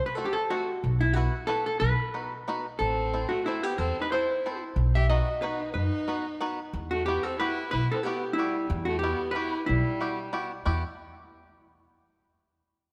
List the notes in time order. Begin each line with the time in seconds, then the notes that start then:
0.06 B4
0.15 A3 C4 F#4 A4
0.25 G4
0.33 A4
0.50 A3 C4 F#4 A4
0.84 B1
1.01 E4
1.13 B3 E4 F#4 B4
1.47 B3 E4 F#4 A4 B4
1.66 A4
1.80 B1 B4
2.14 B3 D#4 F#4 B4
2.48 B3 D#4 F#4 B4
2.79 A1 C4 A4
3.13 C4 E4 A4 C5
3.29 A3 F#4
3.45 A3 C4 E4 A4 C5
3.62 B3 G4
3.78 E2 C4 A4
4.01 D#4 B4
4.12 C4 E4 A4 C5
4.46 C4 E4 A4 C5
4.76 B1
4.95 G4 E5
5.10 B3 D#4 F#4 B4 D#5
5.42 B3 D#4 F#4 B4
5.74 F#2 D#4 B4
6.08 B3 D#4 F#4 B4
6.40 B3 D#4 F#4 B4
6.73 E2
6.91 A3 F#4
7.06 B3 E4 F#4 G4
7.23 C4 A4
7.39 B3 E4 F#4 G4 B4
7.71 B1 E4 B4
7.92 C4 A4
8.03 B3 E4 F#4 G4
8.33 G3 E4
8.38 B3 E4 F#4 G4
8.70 E2
8.85 A3 F#4
8.99 B3 G4
9.03 B3 E4 F#4 G4
9.31 B3 E4 B4
9.36 E4 F#4 G4
9.66 B1 G3 E4
10.01 B3 E4 F#4 G4
10.33 B3 E4 F#4 G4
10.65 E2 B3 E4 F#4 G4